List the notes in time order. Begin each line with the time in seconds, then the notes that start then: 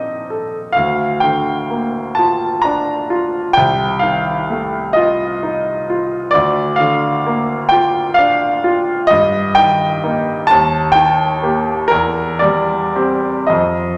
Already playing: A#1 D#3 C4 D#4 A4 D5 D#5
0.30 A4
0.72 D2 F5
1.20 D3 G5
1.70 A#3
2.15 F4 A5
2.62 D4 A#5
3.10 F4
3.53 C2 G5
3.99 D#3 F5
4.50 A3
4.93 F4 D#5
5.43 D#4
5.90 F4
6.31 D2 D5
6.76 F5
6.80 D3
7.26 A#3
7.69 F4 G5
8.14 D4 F5
8.64 F4
9.07 G2 D#5
9.55 D#3 G5
10.04 A#3 D#4
10.47 D#2 A5
10.92 D#3 G5
11.43 A#3 G4
11.88 E2 A#4
12.39 G3 D5
12.96 C4 G4
13.47 F2 D#5